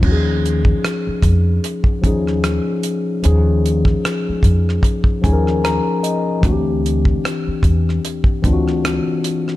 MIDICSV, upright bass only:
0, 0, Header, 1, 3, 480
1, 0, Start_track
1, 0, Tempo, 800000
1, 20, Time_signature, 4, 2, 24, 8
1, 5739, End_track
2, 0, Start_track
2, 0, Title_t, "Upright bass"
2, 0, Program_c, 0, 32
2, 23, Note_on_c, 0, 39, 92
2, 428, Note_off_c, 0, 39, 0
2, 741, Note_on_c, 0, 41, 82
2, 943, Note_off_c, 0, 41, 0
2, 1227, Note_on_c, 0, 39, 78
2, 1543, Note_off_c, 0, 39, 0
2, 1950, Note_on_c, 0, 39, 96
2, 2352, Note_off_c, 0, 39, 0
2, 2664, Note_on_c, 0, 41, 79
2, 2866, Note_off_c, 0, 41, 0
2, 3150, Note_on_c, 0, 39, 76
2, 3465, Note_off_c, 0, 39, 0
2, 3865, Note_on_c, 0, 38, 108
2, 4269, Note_off_c, 0, 38, 0
2, 4582, Note_on_c, 0, 40, 81
2, 4784, Note_off_c, 0, 40, 0
2, 5069, Note_on_c, 0, 38, 82
2, 5385, Note_off_c, 0, 38, 0
2, 5739, End_track
3, 0, Start_track
3, 0, Title_t, "Muted upright bass strokes"
3, 643, Note_on_c, 9, 29, 40
3, 703, Note_off_c, 9, 29, 0
3, 2572, Note_on_c, 9, 29, 41
3, 2632, Note_off_c, 9, 29, 0
3, 4485, Note_on_c, 9, 29, 41
3, 4545, Note_off_c, 9, 29, 0
3, 5739, End_track
0, 0, End_of_file